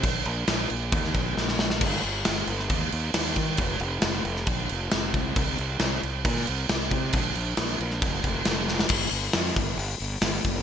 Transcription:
<<
  \new Staff \with { instrumentName = "Fingered electric bass" } { \clef bass \time 4/4 \key f \mixolydian \tempo 4 = 135 bes,,8 bes,,8 bes,,8 bes,,8 ees,8 bes,,8 bes,,4 | g,,8 g,,8 g,,8 g,,8 ees,8 ees,8 ees,8 ees8 | f,,8 f,,8 f,,8 f,,8 bes,,8 f,,8 f,,8 c,8 | c,8 c,8 c,8 c,8 bes,8 c,8 c,8 c8 |
bes,,8 bes,,8 bes,,8 bes,,8 f,,8 f,,8 f,,4 | \key c \mixolydian g,,8 g,,8 f,8 g,,8 g,,8 g,,8 g,,8 g,,8 | }
  \new DrumStaff \with { instrumentName = "Drums" } \drummode { \time 4/4 <cymc bd>8 cymc8 <cymc sn>8 cymc8 <cymc bd>16 sn16 <cymc bd>8 sn16 sn16 sn16 sn16 | <cymc bd>8 cymc8 <cymc sn>8 cymc16 sn16 <cymc bd>8 cymc8 <cymc sn>8 <cymc bd>8 | <cymc bd>8 cymc8 <cymc sn>8 cymc16 sn16 <cymc bd>8 cymc8 <cymc sn>8 <cymc bd>8 | <cymc bd>8 cymc8 <cymc sn>8 cymc8 <cymc bd>16 sn16 cymc8 <cymc sn>8 <cymc bd>8 |
<cymc bd>8 cymc8 <cymc sn>8 cymc16 sn16 <cymc bd>8 <cymc bd>8 <cymc sn>8 sn16 sn16 | <cymc bd>8 hho8 <hho sn>8 <hho bd>8 hho8 hho8 <hho sn>8 <hho bd>8 | }
>>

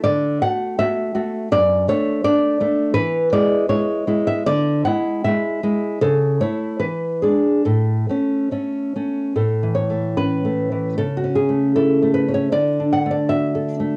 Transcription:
\new Staff \with { instrumentName = "Nylon-string guitar" } { \time 2/4 \key a \major \tempo 4 = 78 << { d''8 fis''8 e''4 | d''8 cis''8 d''4 | b'8 d''8 cis''8. e''16 | d''8 fis''8 e''4 |
a'8 cis''8 b'8 gis'8 | a'4 r4 | a'8 cis''8 b'4 | a'16 fis'16 gis'8 a'8 b'16 cis''16 |
d''8 fis''16 d''16 e''4 | } \\ { d8 <a fis'>8 <a fis'>8 <a fis'>8 | fis,8 <a d'>8 <a d'>8 <a d'>8 | e8 <gis e'>8 <gis e'>8 <gis e'>8 | d8 <gis e'>8 <gis e'>8 <gis e'>8 |
cis8 <a e'>8 e8 <gis d'>8 | a,8 <a cis'>8 <a cis'>8 <a cis'>8 | \tuplet 3/2 { a,8 e8 a8 cis'8 a8 e8 } | \tuplet 3/2 { cis8 cis'8 a8 e'8 a8 cis'8 } |
\tuplet 3/2 { d8 d'8 a8 fis'8 a'8 a8 } | } >> }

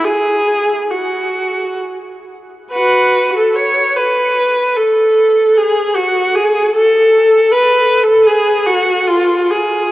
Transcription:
\new Staff \with { instrumentName = "Viola" } { \time 3/4 \key fis \minor \tempo 4 = 75 gis'4 fis'4 r4 | <fis' b'>8. a'16 cis''8 b'4 a'8~ | a'8 gis'8 fis'8 gis'8 a'4 | \tuplet 3/2 { b'4 a'8 } gis'8 fis'8 eis'8 gis'8 | }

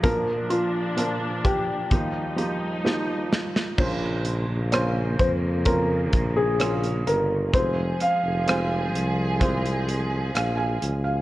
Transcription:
<<
  \new Staff \with { instrumentName = "Grand piano" } { \time 4/4 \key bes \dorian \tempo 4 = 64 bes'8 f'4 g'2 r8 | r4. c''8 bes'8. aes'8. bes'8 | c''8 f''4. r2 | }
  \new Staff \with { instrumentName = "Felt piano" } { \time 4/4 \key bes \dorian <f bes d' bes'>4 <f bes d' bes'>4 <f bes ees' g'>8 <f bes ees' g'>8 <f bes ees' g'>4 | <bes des' f' c''>4 <bes des' f' c''>4 <bes des' f' c''>4 <bes des' f' des''>4 | <aes c' f' c''>4 <aes c' f' c''>4 <aes c' f' c''>4 f''16 <f'' aes''>8 f''16 | }
  \new Staff \with { instrumentName = "Felt piano" } { \clef bass \time 4/4 \key bes \dorian <bes,, bes,>2 ees,2 | bes,4. r2 r8 | r1 | }
  \new Staff \with { instrumentName = "String section" } { \clef bass \time 4/4 \key bes \dorian <bes, f d'>2 <g ees'>2 | <des bes>1 | <f aes'>1 | }
  \new Staff \with { instrumentName = "Tuba" } { \clef bass \time 4/4 \key bes \dorian r1 | bes,,8. bes,,8. f,4 bes,,4 g,,8 | f,,8 r16 f,,8. c,4. bes,,8 des,8 | }
  \new DrumStaff \with { instrumentName = "Drums" } \drummode { \time 4/4 <hh bd>8 hh8 hh8 <hh bd>8 <hh bd>8 hh8 sn8 sn16 sn16 | <cymc bd>8 hh8 <hh ss>8 <hh bd>8 <hh bd>8 <hh bd>8 <hh ss>16 hh16 hh8 | <hh bd>8 hh8 <hh ss>8 hh8 <hh bd>16 hh16 hh8 <hh ss>8 hh8 | }
>>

